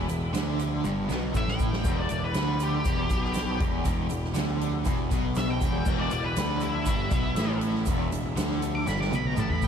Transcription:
0.09 E1 E2, closed hi-hat, shaker
0.34 D2 D3, snare, closed hi-hat, shaker
0.59 closed hi-hat, shaker
0.84 G1 G2, high tom, shaker
1.08 B1 B2, snare, shaker
1.33 A1 A2, kick, shaker
1.37 E5
1.48 G5, snare
1.59 kick, shaker
1.73 snare
1.84 E1 E2, kick, crash, shaker
1.99 D5
2.09 E1 E2 D5, closed hi-hat, shaker
2.24 B4
2.34 D2 D3, snare, closed hi-hat, shaker
2.60 G4, closed hi-hat, shaker
2.84 E1 E2, kick, closed hi-hat, shaker
3.09 B1 B2, kick, closed hi-hat, shaker
3.24 snare
3.34 snare, closed hi-hat, shaker
3.60 E1 E2, kick, closed hi-hat
3.85 E1 E2, kick, closed hi-hat, shaker
4.09 E1 E2, closed hi-hat, shaker
4.24 snare
4.34 D2 D3, snare, closed hi-hat, shaker
4.61 closed hi-hat
4.84 E1 E2, kick, closed hi-hat, shaker
5.10 B1 B2, kick, closed hi-hat, shaker
5.35 E5, snare, closed hi-hat, shaker
5.50 G5
5.60 E1 E2, kick, closed hi-hat, shaker
5.85 E1 E2, kick, crash, shaker
5.99 D5
6.11 E1 E2 D5, closed hi-hat, shaker
6.24 B4
6.36 D2 D3, snare, closed hi-hat, shaker
6.60 E4, closed hi-hat, shaker
6.86 G1 G2, kick, closed hi-hat, shaker
7.11 B1 B2, kick, closed hi-hat, shaker
7.36 A1 A2, snare, closed hi-hat, shaker
7.61 closed hi-hat
7.75 snare
7.85 E1 E2, kick, closed hi-hat, shaker
8.12 E1 E2, closed hi-hat, shaker
8.36 D2 D3, snare, closed hi-hat, shaker
8.51 snare
8.62 closed hi-hat, shaker
8.75 D6
8.86 G1 G2 B5, snare, shaker
9.00 D6, snare
9.11 B1 B2, high tom, shaker
9.15 B5
9.25 A#5, high tom
9.36 A1 A2 A5, mid tom, shaker
9.50 B5, mid tom
9.62 G5, floor tom, shaker

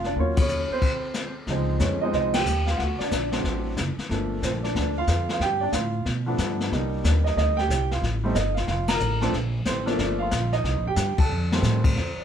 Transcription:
Already playing: F1
0.04 D4 D5, snare
0.16 D#2 F#3 A#3 C#4 F4, brush sweep, kick
0.20 C#5
0.37 kick, ride
0.41 C#4 C#5
0.48 hi-hat pedal
0.70 C4 C5, muted upright bass stroke
0.82 brush sweep, kick, crash
1.14 snare, hi-hat pedal
1.47 C#2 F3 G#3 C4 D#4, brush sweep, kick, snare
1.79 F2 C#4 C#5, kick, snare, hi-hat pedal
2.02 F3 G#3 C4 D#4 D#5
2.13 C2 D#5, brush sweep, kick, snare
2.18 D#4
2.33 G5, snare, ride
2.38 G4
2.45 D#2, hi-hat pedal
2.66 F5, snare
2.71 F4
2.77 D2 F#5, brush sweep, kick, snare
2.82 F#4
2.99 D4 D5, muted upright bass stroke, snare
3.10 A#1 D4 D5, kick, snare, hi-hat pedal
3.32 F#3 A3 C4 D4, snare
3.44 A1, brush sweep, kick, snare
3.77 F#1, kick, snare, hi-hat pedal
3.97 muted upright bass stroke, snare
4.09 G1 F3 A3 A#3 D4, brush sweep, kick, snare
4.42 A#1 C4 C5, kick, snare, hi-hat pedal
4.63 D4 D5, snare
4.75 D2 D4 D5, brush sweep, kick, snare
4.98 F4 F5
5.07 F2, kick, snare, hi-hat pedal
5.29 F4 F5, snare
5.40 G2 G4 G5, brush sweep, kick, snare
5.61 D4 D5
5.72 A2 F4 F5, kick, snare, hi-hat pedal
6.06 B2, brush sweep, kick, snare
6.26 F3 A3 B3 D4
6.38 G2, kick, snare, hi-hat pedal
6.60 snare
6.72 C2 G3 A#3 D4 D#4, brush sweep, kick, snare
7.04 D#2 D4 D5, kick, snare, hi-hat pedal
7.24 D#4 D#5, snare
7.36 D2 D#5, brush sweep, kick, snare
7.40 D#4
7.57 G4 G5, snare
7.69 C2, kick, snare, hi-hat pedal
7.91 F4 F5, snare
8.02 A1, brush sweep, kick, snare
8.24 G3 A3 C4 D#4
8.35 G1 D#4 D#5, kick, snare, hi-hat pedal
8.54 F4 F5, snare
8.67 F1 F5, brush sweep, kick, snare
8.71 F4
8.88 A#5, snare, ride
8.94 A#4
9.00 A1, hi-hat pedal
9.21 F3 A3 C4 D4 A5, snare
9.25 A4
9.33 A#1, brush sweep, kick, snare
9.65 A1 C4 C5, kick, snare, hi-hat pedal
9.86 F3 A3 A#3 D4 D5, snare
9.98 G1 D4 D5, brush sweep, kick, snare
10.19 F4 F5
10.31 A#1, kick, snare, hi-hat pedal
10.52 D#4 D#5, snare
10.64 C2, brush sweep, kick, snare
10.76 A#1
10.86 G1 G4 G5
10.96 G2, snare, hi-hat pedal
11.18 A4 A5, muted upright bass stroke, kick, crash
11.29 F2
11.52 D#3 G3 A3 C4, snare
11.62 A2, snare, hi-hat pedal
11.84 kick, crash
11.96 F2 C5, brush sweep, snare
12.17 D5, muted upright bass stroke

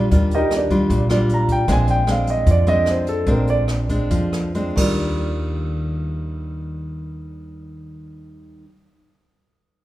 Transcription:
0.11 D#2 D#3 G3 D4 F4, kick, closed hi-hat
0.31 A#4 D#5, closed hi-hat
0.35 D#4 G4
0.51 cross-stick, closed hi-hat
0.57 D4 G4 A#4 D5
0.70 G3 D4 F4, kick, closed hi-hat
0.90 A#1 A#2, kick, closed hi-hat
1.10 G3 D4 F4, cross-stick, closed hi-hat
1.29 closed hi-hat
1.34 A#5
1.49 G5, kick, closed hi-hat
1.68 A#1 A#2 G#3 C4 D4, kick, cross-stick, closed hi-hat
1.72 G#5
1.87 G5, closed hi-hat
2.07 G#3 C4 D4, cross-stick, closed hi-hat
2.11 F5
2.27 D#5, closed hi-hat
2.46 F2 F3, kick, closed hi-hat
2.51 D5
2.66 G#3 C4 D4 D#5, closed hi-hat
2.86 cross-stick, closed hi-hat
2.91 C5
3.07 A4, closed hi-hat
3.26 A#1 A#2 G#3 C4 D4, kick, closed hi-hat
3.31 A#4
3.47 D5, closed hi-hat
3.68 cross-stick, closed hi-hat
3.89 G#3 C4 D4, kick, closed hi-hat
4.10 F2 F3, kick, closed hi-hat
4.33 cross-stick, closed hi-hat
4.55 G#3 C4 D4, closed hi-hat
4.76 D#2 D#3 G3 D4, kick, crash
4.81 F4

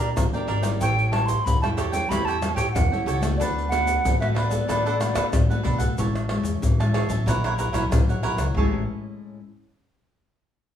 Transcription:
Already playing: A#2 A#3 D4 G4 A#5
0.16 D2 A#2, pandeiro, tamborim, shaker, surdo
0.33 A#3 D4 G4 A#4 D5 G5, pandeiro, shaker
0.47 G#1 D4 A#4 D5 G5, pandeiro, surdo
0.63 G3 C#4 E4 A#4 D5 G5, pandeiro, tamborim, shaker
0.81 A1 A2 G4 A4 C#5 G5, pandeiro, shaker, surdo
0.99 pandeiro, shaker
1.12 G3 C#4 E4 G4 A4 C#5 G5 A5, pandeiro, tamborim
1.26 C6, pandeiro, shaker, surdo
1.44 E2 E3 B5, pandeiro, shaker, surdo
1.62 G3 C#4 E4 A4 C#5 G5 A5, pandeiro, tamborim, shaker
1.77 G4 A4 C#5 G5, pandeiro, tamborim, shaker, surdo
1.91 G3 C#4 E4 A4 C#5 G5, pandeiro, shaker, surdo
2.09 E2 A2 G3 C#4 E4 G4 A4 C#5 G5 B5, pandeiro, tamborim, shaker, surdo
2.25 G4 A4 C#5 G5 A5, pandeiro, shaker
2.41 G3 C#4 E4 G4 A4 C#5 G5, pandeiro, tamborim, shaker
2.54 A2 G4 A4 C#5 G5, pandeiro, shaker, surdo
2.72 E2 E3 F#5, pandeiro, tamborim, shaker, surdo
2.91 G3 C#4 E4 A4 C#5 G5, pandeiro, shaker
3.06 C#2 G4 A4 C#5 G5, pandeiro, shaker, surdo
3.21 A3 B3 F#4 A4 C#5 G5, pandeiro, tamborim, shaker
3.37 D2 D3 D4 A4 B4 D5, pandeiro, shaker, surdo
3.42 F#5
3.58 pandeiro, shaker
3.69 A3 B3 D4 F#4 A4 B4 F#5, pandeiro, tamborim, shaker
3.73 F#5
3.87 pandeiro, shaker, surdo
4.05 A1 A2, pandeiro, shaker, surdo
4.20 A3 B3 F#4 A4 B4 E5 F#5, pandeiro, tamborim, shaker
4.34 D4 A4 B4 F#5, pandeiro, tamborim, surdo
4.49 A3 B3 F#4 A4 B4 D5 F#5, pandeiro, shaker, surdo
4.68 A1 D3 A3 B3 D4 F#4 A4 B4 F#5, pandeiro, tamborim, shaker, surdo
4.86 D4 A4 B4 F#5, pandeiro, shaker
5.00 A3 B3 D4 F#4 A4 B4 F#5, pandeiro, tamborim, shaker
5.15 D3 D4 A4 B4 F#5, pandeiro, tamborim, shaker, surdo
5.33 A1 A2, pandeiro, tamborim, shaker, surdo
5.50 A3 B3 F#4 A4 B4 F#5, pandeiro, shaker
5.63 B1 D4 A4 B4 F#5, pandeiro, surdo
5.78 A4 B4 F#5, pandeiro, shaker, surdo
5.98 A1 A2 G#3 C#4 E4 C#5 E5 A5, pandeiro, shaker, surdo
6.15 pandeiro, tamborim, shaker
6.29 G#3 C#4 E4 C#5 E5 A5, pandeiro, tamborim
6.43 E2, pandeiro, shaker, surdo
6.62 A1 E3, pandeiro, shaker, surdo
6.80 G#3 C#4 E4 C#5 E5 A5, pandeiro, tamborim, shaker
6.94 G#4 C#5 E5 A5, pandeiro, tamborim
7.09 A1 F#3 C#4 E4 C#5 E5 A5, pandeiro, shaker, surdo
7.26 A#1 A#2 E4 A#4 C#5 F#5, pandeiro, tamborim, shaker, surdo
7.44 E4 A#4 C#5 F#5, pandeiro, tamborim, shaker
7.58 E4 A#4 C#5 F#5, pandeiro, shaker, surdo
7.73 A#1 F#3 C#4 E4 A#4 C#5 F#5, pandeiro, tamborim, shaker
7.91 A#1 A#2, pandeiro, tamborim, shaker, surdo
8.09 A#4 C#5 F#5, pandeiro, shaker
8.22 F#3 C#4 E4 A#4 C#5 F#5, pandeiro
8.37 C#2 A#4 C#5 F#5, pandeiro, tamborim, shaker, surdo
8.54 A1 A2 G#3 C#4 E4 G#4 C#5 E5 A5, surdo

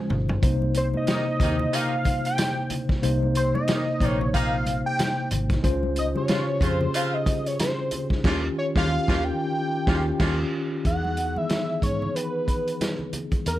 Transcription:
Already playing: F3 C#4 F4 C5 G#5
0.10 G1, mid tom, muted conga, low conga
0.29 floor tom, high conga
0.42 C2 C3 A#3 D#4 C5, kick, closed hi-hat, muted conga
0.62 high conga
0.74 C5, closed hi-hat, muted conga
0.93 C3 A#3 D#4 C5 D#5, high conga
1.07 C3 D#3 A#3 D#4, snare, closed hi-hat, high conga
1.40 D#2 C3 D#3 A#3 D#4 C5, kick, snare, closed hi-hat, muted conga
1.59 low conga
1.73 C3 D#3 A#3 D#4 F5, closed hi-hat
2.05 kick, closed hi-hat, muted conga, high conga
2.25 G5, closed hi-hat
2.38 snare, closed hi-hat, high conga
2.70 closed hi-hat, muted conga, low conga
2.89 kick, snare, high conga
3.02 C2 C3 A#3 D#4 C5, closed hi-hat
3.23 high conga
3.35 C5, closed hi-hat
3.55 D#5, high conga
3.68 C3 D#3 A#3 D#4, snare, closed hi-hat, muted conga, high conga
4.00 A#1 C3 D#3 A#3 D#4 C5, kick, closed hi-hat, muted conga
4.09 C#5
4.21 low conga
4.34 C3 D#3 A#3 D#4 F5, kick, closed hi-hat
4.66 closed hi-hat, muted conga, high conga
4.86 G5
4.99 snare, closed hi-hat, muted conga, high conga
5.31 G#1, closed hi-hat, muted conga, low conga
5.50 kick, snare, closed hi-hat, high conga
5.63 C#2 C#3 C#4 F4 C5, kick, closed hi-hat, muted conga
5.83 high conga
5.96 D#5, closed hi-hat
6.15 C#3 C#4 F4 G4 C#5, high conga
6.28 C#3 F3 C4 F4, snare, closed hi-hat, muted conga, high conga
6.61 F2 C#3 F3 C4 C#4 F4 G#4, kick, closed hi-hat, muted conga
6.68 C5
6.81 low conga
6.94 C#3 F3 C4 F4 F5, closed hi-hat
7.14 D#5
7.26 kick, closed hi-hat, high conga
7.46 C#5, closed hi-hat
7.60 C5, snare, closed hi-hat, high conga
7.91 closed hi-hat, low conga
8.10 kick, snare, high conga
8.24 D#2 C#3 D#3 F3 A#3 C#4 F4 G4, kick, snare, crash
8.58 C#5
8.76 D#2 C#3 D#3 F3 A#3 C#4 F4 G4 F5, kick, snare
9.08 D#2 C#3 D#3 F3 A#3 C#4 F4 G4, kick, snare
9.24 G5
9.87 D#2 C#3 D#3 F3 A#3 C#4 F4 G4, kick, snare
10.19 D#2 C#3 D#3 F3 A#3 C#4 F4 G4, kick, snare, crash
10.85 E2 E3 B3 D#4 G#4 F#5, kick, closed hi-hat
11.05 high conga
11.17 closed hi-hat, muted conga
11.36 D#3 E3 B3 G#4 E5, high conga
11.50 snare, closed hi-hat, muted conga, high conga
11.82 G#2 E3 B3 D#4 G#4 C#5, kick, closed hi-hat, muted conga
12.02 low conga
12.15 B4, closed hi-hat, muted conga
12.48 kick, closed hi-hat
12.68 closed hi-hat
12.81 snare, closed hi-hat, muted conga, high conga
12.99 low conga
13.13 closed hi-hat, muted conga, low conga
13.31 kick, closed hi-hat, high conga
13.46 E2 A#4, closed hi-hat, muted conga

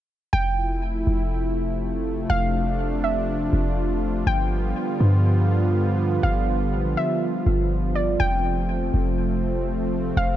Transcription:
0.33 F1 C3 F3 A3 E4 F4 G5
1.07 F1
2.30 F1 D4 F5
3.04 E5
3.53 F1
4.27 G1 D3 G3 B3 G5
5.01 G2
6.23 G1 F5
6.73 A1
6.97 E5
7.46 G1
7.95 D5
8.20 F1 C3 A3 C4 G5
8.94 F1
10.17 F1 G4 F5

